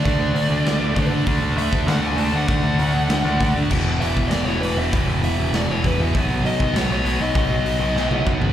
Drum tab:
CC |--------|--------|--------|x-------|
HH |o-o-o-o-|o-o-o-o-|o-o-o-o-|--o-o-o-|
SD |----o---|----o---|----o---|----o---|
T1 |--------|--------|--------|--------|
T2 |--------|--------|--------|--------|
FT |--------|--------|--------|--------|
BD |o-----o-|o--o----|o-----o-|o--o----|

CC |--------|--------|--------|
HH |o-o-o-o-|o-o-o-o-|o-o-----|
SD |----o---|----o---|----o---|
T1 |--------|--------|-----o--|
T2 |--------|--------|------o-|
FT |--------|--------|-------o|
BD |o-----o-|o--o----|o-----o-|